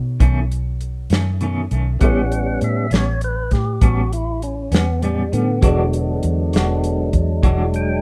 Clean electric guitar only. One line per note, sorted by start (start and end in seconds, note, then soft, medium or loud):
0.20 0.38 B2 medium
0.20 0.38 D#3 medium
0.20 0.39 A3 medium
0.20 0.39 C#4 medium
1.11 1.31 D#3 soft
1.11 1.30 A3 medium
1.11 1.29 C#4 medium
1.41 1.59 B2 medium
1.41 1.60 D#3 medium
1.41 1.60 A3 medium
1.41 1.61 C#4 medium
1.71 1.91 D#3 soft
1.71 1.90 A3 soft
1.71 1.90 C#4 soft
2.01 2.19 A2 medium
2.01 2.19 G3 medium
2.01 2.20 B3 medium
2.01 2.20 C#4 medium
2.90 3.11 G3 soft
2.90 3.10 B3 soft
2.90 3.09 C#4 medium
3.81 4.00 A2 medium
3.81 4.00 G3 medium
3.81 4.01 B3 medium
3.81 4.01 C#4 medium
4.72 4.92 G3 soft
4.72 4.91 B3 soft
4.72 4.90 C#4 medium
5.02 5.21 A2 medium
5.02 5.21 G3 medium
5.02 5.22 B3 medium
5.02 5.22 C#4 medium
5.32 5.52 G3 soft
5.32 5.51 B3 soft
5.32 5.51 C#4 soft
5.62 5.81 E3 medium
5.62 5.81 G#3 medium
5.62 5.82 D4 medium
5.62 5.82 F#4 medium
6.54 6.73 G#3 soft
6.54 6.72 D4 soft
6.54 6.72 F#4 medium
7.43 7.62 E3 medium
7.43 7.62 G#3 medium
7.43 7.62 D4 medium
7.43 7.62 F#4 medium